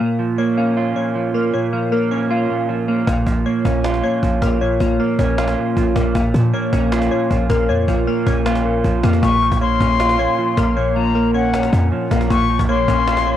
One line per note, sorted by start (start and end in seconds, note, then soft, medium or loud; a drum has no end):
0.00 0.95 A#2 loud
0.00 0.56 A#3 medium
0.19 1.14 F3 medium
0.38 1.33 A#3 medium
0.38 0.95 C#5 medium
0.57 1.72 A#3 medium
0.57 1.54 C#4 medium
0.77 1.73 F4 loud
0.96 1.52 A#2 medium
0.96 1.52 C#5 medium
1.15 1.72 F3 medium
1.34 1.91 A#3 medium
1.34 1.91 A#4 medium
1.54 2.48 A#2 loud
1.54 2.10 C#5 medium
1.73 2.68 F3 medium
1.73 2.29 A#3 medium
1.92 2.87 A#3 medium
1.92 3.07 A#4 medium
2.11 3.07 C#4 medium
2.11 3.07 C#5 medium
2.30 2.87 A#3 medium
2.30 3.07 F4 loud
2.50 3.06 A#2 medium
2.69 3.07 F3 medium
2.88 3.06 A#3 medium
2.88 3.07 A#3 medium
3.07 3.26 A#1 loud
3.07 4.02 A#2 loud
3.07 3.64 A#3 medium
3.07 cajon bass loud
3.27 3.45 A#1 loud
3.27 4.22 F3 medium
3.27 cajon bass medium
3.46 4.41 A#3 medium
3.46 4.02 C#5 medium
3.46 cajon slap soft
3.65 4.02 A#1 loud
3.65 4.79 A#3 medium
3.65 4.61 C#4 medium
3.65 cajon bass loud
3.84 4.80 F4 loud
3.84 cajon slap loud
3.94 cajon slap medium
4.04 4.60 A#2 medium
4.04 4.60 C#5 medium
4.04 cajon slap soft
4.23 4.41 A#1 loud
4.23 4.79 F3 medium
4.23 cajon bass medium
4.42 4.79 A#1 loud
4.42 4.99 A#3 medium
4.42 4.99 A#4 medium
4.42 cajon bass medium
4.42 cajon slap medium
4.61 5.56 A#2 medium
4.61 5.18 C#5 medium
4.61 cajon slap soft
4.80 4.99 A#1 loud
4.80 5.75 F3 medium
4.80 5.37 A#3 loud
4.80 cajon bass medium
5.00 5.95 A#3 medium
5.00 6.15 A#4 medium
5.19 5.56 A#1 loud
5.19 6.15 C#4 medium
5.19 6.15 C#5 medium
5.19 cajon bass loud
5.38 5.95 A#3 loud
5.38 6.15 F4 loud
5.38 cajon slap loud
5.48 cajon slap medium
5.57 6.14 A#2 medium
5.57 cajon slap soft
5.77 5.95 A#1 loud
5.77 6.15 F3 medium
5.77 cajon bass medium
5.96 6.14 A#1 loud
5.96 6.14 A#3 medium
5.96 6.15 A#3 medium
5.96 cajon bass medium
5.96 cajon slap loud
6.15 6.34 A#1 loud
6.15 7.10 A#2 loud
6.15 6.72 A#3 medium
6.15 cajon bass loud
6.34 6.53 A#2 loud
6.34 7.29 F3 medium
6.34 cajon bass medium
6.54 7.49 A#3 loud
6.54 7.10 C#5 medium
6.54 cajon slap soft
6.73 7.10 A#1 loud
6.73 7.87 A#3 loud
6.73 7.69 C#4 medium
6.73 cajon bass loud
6.92 7.88 F4 loud
6.92 cajon slap loud
7.02 cajon slap medium
7.11 7.68 A#2 medium
7.11 7.68 C#5 medium
7.11 cajon slap soft
7.30 7.49 A#1 loud
7.30 7.87 F3 medium
7.30 cajon bass medium
7.50 7.70 A#1 loud
7.50 8.06 A#3 medium
7.50 8.06 A#4 medium
7.50 cajon bass medium
7.50 cajon slap medium
7.69 7.87 F2 medium
7.69 8.64 A#2 loud
7.69 8.25 C#5 medium
7.88 8.07 A#1 loud
7.88 8.83 F3 medium
7.88 8.45 A#3 medium
7.88 cajon bass medium
8.07 9.02 A#3 loud
8.07 9.23 A#4 medium
8.07 cajon slap soft
8.27 8.82 A#1 loud
8.27 9.23 C#4 medium
8.27 9.23 C#5 medium
8.27 cajon bass loud
8.46 9.02 A#3 medium
8.46 9.23 F4 loud
8.46 cajon slap loud
8.55 cajon slap medium
8.65 9.22 A#2 medium
8.65 cajon slap soft
8.84 9.03 A#1 loud
8.84 9.23 F3 medium
8.84 cajon bass medium
9.03 9.22 F2 loud
9.03 9.22 A#3 medium
9.03 9.23 A#3 medium
9.03 cajon bass medium
9.03 cajon slap medium
9.13 cajon slap medium
9.22 9.50 A#1 loud
9.22 10.18 A#2 loud
9.22 9.79 A#3 medium
9.22 9.59 C#6 loud
9.22 cajon bass loud
9.42 10.37 F3 medium
9.42 cajon slap soft
9.52 9.79 A#1 loud
9.52 cajon bass loud
9.61 10.56 A#3 medium
9.61 10.18 C#5 medium
9.61 10.73 C6 loud
9.61 cajon slap soft
9.80 10.27 A#1 loud
9.80 10.95 A#3 medium
9.80 10.77 C#4 medium
9.80 cajon bass loud
10.00 10.96 F4 loud
10.00 cajon slap loud
10.09 cajon slap medium
10.19 10.75 A#2 medium
10.19 10.75 C#5 medium
10.19 cajon slap soft
10.38 10.95 F3 medium
10.38 cajon slap soft
10.57 11.69 A#1 loud
10.57 11.14 A#3 medium
10.57 11.14 A#4 medium
10.57 cajon bass loud
10.57 cajon slap loud
10.77 11.71 A#2 medium
10.77 11.33 C#5 medium
10.77 cajon slap soft
10.96 11.91 F3 medium
10.96 11.52 A#3 loud
10.96 11.32 A#5 medium
10.96 cajon slap soft
11.15 12.10 A#3 medium
11.15 12.30 A#4 medium
11.15 cajon slap soft
11.34 12.30 C#4 medium
11.34 12.30 C#5 medium
11.34 11.88 F#5 medium
11.34 cajon slap soft
11.54 12.10 A#3 medium
11.54 cajon slap loud
11.63 cajon slap medium
11.73 11.91 F2 loud
11.73 12.29 A#2 medium
11.73 cajon bass medium
11.92 12.30 F3 medium
11.92 cajon slap soft
12.11 12.30 A#1 loud
12.11 12.30 A#3 medium
12.11 12.29 A#3 medium
12.11 cajon bass medium
12.11 cajon slap loud
12.21 cajon slap medium
12.30 12.58 A#1 loud
12.30 13.25 A#2 loud
12.30 12.87 A#3 medium
12.30 12.67 C#6 loud
12.30 cajon bass loud
12.50 13.37 F3 medium
12.50 cajon slap soft
12.59 12.80 A#1 loud
12.59 cajon bass loud
12.69 13.37 A#3 loud
12.69 13.25 C#5 medium
12.69 13.37 C6 medium
12.69 cajon slap soft
12.79 12.88 A1 loud
12.88 13.34 A#1 loud
12.88 13.37 A#3 loud
12.88 13.37 C#4 medium
12.88 cajon bass loud
13.07 13.37 F4 loud
13.07 cajon slap loud
13.17 cajon slap medium
13.27 13.37 A#2 medium
13.27 13.37 C#5 medium
13.27 cajon slap soft